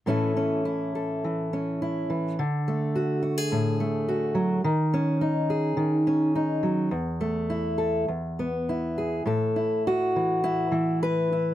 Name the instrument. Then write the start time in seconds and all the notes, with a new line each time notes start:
steel-string acoustic guitar
0.06 A2 E3 C#4 E4 A4
0.37 C#4
0.65 E4
0.95 A4
1.24 E3
1.53 C#4
1.82 E4
2.10 E3
2.39 D3
2.68 A3
2.96 F#4
3.23 F#4
3.38 G#4
3.52 A2
3.80 A3
4.09 F#4
4.35 F#3
4.64 D#3
4.94 C#4
5.21 D#4
5.50 G#4
5.77 D#3
6.07 C#4
6.35 D#4
6.63 F#3
6.91 E2
7.21 A3
7.50 E4
7.78 A4
8.08 E2
8.39 B3
8.69 E4
8.98 G#4
9.26 A2 A4
9.56 E4
9.87 F#4
10.16 E3
10.44 E4
10.72 E3
11.03 B4
11.32 E4